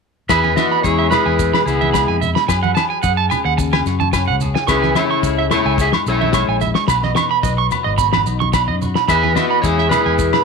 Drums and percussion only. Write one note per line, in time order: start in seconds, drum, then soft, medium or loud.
0.29 kick medium
0.29 snare medium
0.29 low agogo medium
0.29 maracas medium
0.44 high conga medium
0.57 snare medium
0.57 high conga medium
0.57 low agogo medium
0.57 maracas medium
0.84 kick medium
0.84 maracas medium
1.12 snare medium
1.12 low conga medium
1.12 low agogo medium
1.12 maracas medium
1.39 kick medium
1.39 maracas medium
1.54 snare medium
1.54 high conga medium
1.54 low agogo medium
1.67 maracas medium
1.82 high conga medium
1.94 kick medium
1.94 snare medium
1.94 low agogo medium
1.94 maracas medium
2.22 low conga medium
2.22 maracas medium
2.36 snare medium
2.49 kick medium
2.49 snare medium
2.49 low agogo medium
2.49 maracas medium
2.64 high conga medium
2.77 snare medium
2.77 high conga medium
2.77 low agogo medium
2.77 maracas medium
3.03 kick medium
3.03 maracas medium
3.31 low conga medium
3.31 low agogo medium
3.31 maracas medium
3.58 kick medium
3.58 maracas medium
3.73 snare medium
3.73 high conga medium
3.73 low agogo medium
3.86 snare soft
3.86 maracas medium
4.01 high conga medium
4.13 kick medium
4.13 snare medium
4.13 low agogo medium
4.13 maracas medium
4.41 low conga medium
4.41 maracas medium
4.56 snare medium
4.68 kick medium
4.68 snare medium
4.68 low agogo medium
4.68 maracas medium
4.83 snare soft
4.83 high conga medium
4.95 snare medium
4.95 high conga medium
4.95 low agogo medium
4.95 maracas medium
5.23 kick medium
5.23 maracas medium
5.51 snare medium
5.51 low conga medium
5.51 low agogo medium
5.51 maracas medium
5.78 kick medium
5.78 maracas medium
5.93 snare medium
5.93 high conga soft
5.93 low agogo medium
6.07 maracas medium
6.22 high conga medium
6.33 kick medium
6.33 snare medium
6.33 low agogo medium
6.33 maracas loud
6.61 low conga medium
6.61 maracas medium
6.75 snare medium
6.88 kick medium
6.88 snare medium
6.88 low agogo medium
6.88 maracas loud
7.03 snare soft
7.03 high conga medium
7.15 snare medium
7.15 high conga medium
7.15 low agogo medium
7.15 maracas medium
7.43 kick medium
7.43 low conga medium
7.43 maracas medium
7.71 low conga medium
7.71 low agogo medium
7.71 maracas medium
7.98 kick medium
7.98 maracas medium
8.13 snare medium
8.13 high conga medium
8.13 low agogo medium
8.26 maracas medium
8.42 high conga medium
8.54 kick medium
8.54 snare medium
8.54 low agogo medium
8.54 maracas medium
8.82 low conga medium
8.82 maracas medium
8.95 snare medium
9.08 kick medium
9.08 snare medium
9.08 low agogo medium
9.08 maracas medium
9.24 high conga medium
9.36 snare medium
9.36 high conga medium
9.36 low agogo medium
9.36 maracas medium
9.64 kick medium
9.64 maracas medium
9.78 snare soft
9.91 snare medium
9.91 low conga medium
9.91 low agogo medium
9.91 maracas medium
10.19 kick medium
10.19 maracas medium
10.33 snare medium
10.33 high conga medium
10.33 low agogo medium